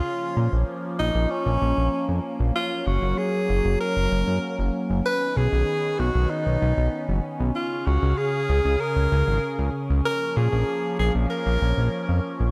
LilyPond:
<<
  \new Staff \with { instrumentName = "Tenor saxophone" } { \time 4/4 \key ais \phrygian \tempo 4 = 96 eis'4 r8 dis'8 cis'4. r8 | eis'8 fis'8 gis'4 ais'4. r8 | b'8 gis'4 fis'8 dis'4. r8 | eis'8 fis'8 gis'4 ais'4. r8 |
ais'8 gis'4 gis'8 ais'4. r8 | }
  \new Staff \with { instrumentName = "Analog synth pad" } { \time 4/4 \key ais \phrygian << { ais1~ | ais1 | <b cis'>1 | <cis gis' eis''>1 |
ais1 | } \\ { <eis cis'>1 | fis1 | dis1 | r1 |
eis1 | } >> }
  \new Staff \with { instrumentName = "Analog synth bass" } { \clef bass \time 4/4 \key ais \phrygian r8 ais,16 ais,,16 r8 ais,,16 ais,,16 r16 ais,,16 ais,,16 ais,,16 r16 eis,16 r16 ais,,16 | r8 fis,,16 fis,,16 r8 fis,,16 fis,,16 r16 fis,,16 fis,,16 fis,16 r16 fis,,16 r16 fis,,16 | r8 b,,16 b,,16 r8 b,,16 b,,16 r16 b,,16 b,,16 b,,16 r16 fis,,16 r16 b,,16 | r8 cis,16 cis,16 r8 cis,16 cis,16 r16 cis,16 cis,16 gis,,16 r16 cis,16 r16 cis,16 |
r8 ais,16 ais,,16 r8 ais,,16 ais,,16 r16 ais,,16 ais,,16 ais,,16 r16 eis,16 r16 ais,,16 | }
>>